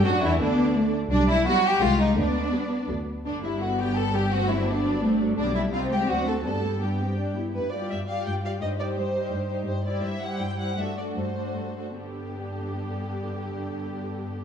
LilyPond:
<<
  \new Staff \with { instrumentName = "Violin section" } { \time 3/4 \key g \major \tempo 4 = 168 fis''8 e''8 d''4. r8 | d''8 e''8 fis''8 g''8 f''8 ees''8 | d''2 r4 | d''8 e''8 fis''8 g''8 a''8 g''8 |
fis''8 e''8 d''4. r8 | d''8 e''8 f''8 g''8 fis''8 a''8 | a''4 g''4. r8 | b'8 d''8 e''8 f''8 g''8 f''8 |
ees''8 d''8 c''4. r8 | c''8 d''8 e''8 fis''8 g''8 fis''8 | e''8 d''8 c''4. r8 | g'2.~ |
g'2. | }
  \new Staff \with { instrumentName = "Violin section" } { \time 3/4 \key g \major fis'8 e'8 d'4. r8 | d'8 e'8 fis'8 g'8 f'8 ees'8 | d'2 r4 | d'8 e'8 fis'8 g'8 a'8 g'8 |
fis'8 e'8 d'4. r8 | d'8 e'8 f'8 g'8 fis'8 a'8 | a'4 g'4. r8 | r8 <g' d''>4 <g' d''>4 <g' d''>8 |
<g' c''>8 <g' c''>4 <g' c''>4 <g' c''>8 | r8 <g' c''>4 <g' c''>4 <g' c''>8 | <fis' a'>8 <fis' a'>4 <fis' a'>4 <fis' a'>8 | <d' g'>2.~ |
<d' g'>2. | }
  \new Staff \with { instrumentName = "Viola section" } { \time 3/4 \key g \major fis8 e8 d4. r8 | r4 <g b>4 <ees aes>4 | r4 <g b>4 <fis a>4 | <d b>8 <g d'>8 <d b>8 <g d'>8 <d b>8 <g d'>8 |
<a c'>8 <fis d'>8 <a c'>8 <fis d'>8 <a c'>8 <fis d'>8 | <d b>8 <g d'>8 <c' ees'>8 <aes c'>8 <fis d'>8 <a fis'>8 | <g d'>8 <b g'>8 <g d'>8 <b g'>8 <g d'>8 <b g'>8 | r8 <g f'>4 <g f'>4 <g f'>8 |
<g ees'>8 <g ees'>4 <g ees'>4 <g ees'>8 | r8 <g e'>4 <g e'>4 <g e'>8 | <a d'>8 <a d'>4 <a d'>4 <a d'>8 | <d b>2.~ |
<d b>2. | }
  \new Staff \with { instrumentName = "Cello section" } { \clef bass \time 3/4 \key g \major d'4 b4 a4 | g4 fis4 aes4 | b2~ b8 r8 | r4 b2 |
c'4 b4 a4 | g4 c'2 | b4 b8 c'8 d'8 e'8 | g,4 g,4 g,4 |
g,4 g,4 g,4 | g,4 g,4 g,4 | g,4 g,4 g,4 | g,2.~ |
g,2. | }
  \new Staff \with { instrumentName = "Double bass section" } { \clef bass \time 3/4 \key g \major fis,8 e,8 d,4. r8 | b,,4 r4 c,4 | d,4 r4 d,4 | g,,2.~ |
g,,2. | b,,4 c,4 d,4 | g,2~ g,8 r8 | r2. |
r2. | r2. | r2. | r2. |
r2. | }
>>